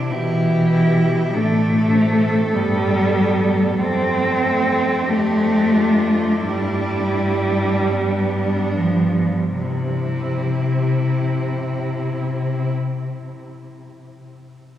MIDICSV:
0, 0, Header, 1, 5, 480
1, 0, Start_track
1, 0, Key_signature, 0, "major"
1, 0, Tempo, 1242236
1, 521, Tempo, 1185771
1, 1001, Tempo, 1273885
1, 1485, Time_signature, 4, 2, 24, 8
1, 1961, Tempo, 1330377
1, 2441, Tempo, 1507538
1, 2921, Tempo, 1704545
1, 3401, Tempo, 1626016
1, 4924, End_track
2, 0, Start_track
2, 0, Title_t, "Cello"
2, 0, Program_c, 0, 42
2, 0, Note_on_c, 0, 64, 33
2, 43, Note_on_c, 0, 67, 37
2, 48, Note_off_c, 0, 64, 0
2, 523, Note_on_c, 0, 69, 35
2, 529, Note_off_c, 0, 67, 0
2, 1486, Note_off_c, 0, 69, 0
2, 1489, Note_on_c, 0, 69, 37
2, 1953, Note_off_c, 0, 69, 0
2, 1966, Note_on_c, 0, 67, 39
2, 2195, Note_on_c, 0, 65, 36
2, 2201, Note_off_c, 0, 67, 0
2, 2441, Note_off_c, 0, 65, 0
2, 2445, Note_on_c, 0, 64, 35
2, 2923, Note_on_c, 0, 62, 31
2, 2927, Note_off_c, 0, 64, 0
2, 3316, Note_off_c, 0, 62, 0
2, 3404, Note_on_c, 0, 64, 27
2, 4319, Note_off_c, 0, 64, 0
2, 4924, End_track
3, 0, Start_track
3, 0, Title_t, "Cello"
3, 0, Program_c, 1, 42
3, 0, Note_on_c, 1, 62, 41
3, 39, Note_on_c, 1, 64, 35
3, 45, Note_off_c, 1, 62, 0
3, 274, Note_off_c, 1, 64, 0
3, 276, Note_on_c, 1, 64, 36
3, 518, Note_on_c, 1, 62, 37
3, 524, Note_off_c, 1, 64, 0
3, 762, Note_on_c, 1, 60, 37
3, 768, Note_off_c, 1, 62, 0
3, 1001, Note_on_c, 1, 59, 36
3, 1006, Note_off_c, 1, 60, 0
3, 1481, Note_off_c, 1, 59, 0
3, 1484, Note_on_c, 1, 57, 34
3, 1718, Note_off_c, 1, 57, 0
3, 1723, Note_on_c, 1, 57, 40
3, 1955, Note_off_c, 1, 57, 0
3, 1959, Note_on_c, 1, 62, 36
3, 2917, Note_on_c, 1, 59, 31
3, 2922, Note_off_c, 1, 62, 0
3, 3313, Note_off_c, 1, 59, 0
3, 3397, Note_on_c, 1, 60, 26
3, 4312, Note_off_c, 1, 60, 0
3, 4924, End_track
4, 0, Start_track
4, 0, Title_t, "Cello"
4, 0, Program_c, 2, 42
4, 42, Note_on_c, 2, 52, 51
4, 521, Note_on_c, 2, 57, 51
4, 527, Note_off_c, 2, 52, 0
4, 1004, Note_on_c, 2, 55, 50
4, 1010, Note_off_c, 2, 57, 0
4, 1482, Note_off_c, 2, 55, 0
4, 1484, Note_on_c, 2, 60, 57
4, 1963, Note_on_c, 2, 57, 55
4, 1968, Note_off_c, 2, 60, 0
4, 2444, Note_on_c, 2, 55, 49
4, 2448, Note_off_c, 2, 57, 0
4, 3157, Note_off_c, 2, 55, 0
4, 3159, Note_on_c, 2, 53, 32
4, 3395, Note_off_c, 2, 53, 0
4, 3399, Note_on_c, 2, 48, 34
4, 4313, Note_off_c, 2, 48, 0
4, 4924, End_track
5, 0, Start_track
5, 0, Title_t, "Cello"
5, 0, Program_c, 3, 42
5, 0, Note_on_c, 3, 48, 38
5, 37, Note_on_c, 3, 47, 34
5, 43, Note_off_c, 3, 48, 0
5, 522, Note_on_c, 3, 45, 39
5, 528, Note_off_c, 3, 47, 0
5, 1001, Note_on_c, 3, 43, 33
5, 1007, Note_off_c, 3, 45, 0
5, 1482, Note_off_c, 3, 43, 0
5, 1485, Note_on_c, 3, 41, 37
5, 2439, Note_on_c, 3, 43, 41
5, 2444, Note_off_c, 3, 41, 0
5, 3314, Note_off_c, 3, 43, 0
5, 3401, Note_on_c, 3, 48, 25
5, 4315, Note_off_c, 3, 48, 0
5, 4924, End_track
0, 0, End_of_file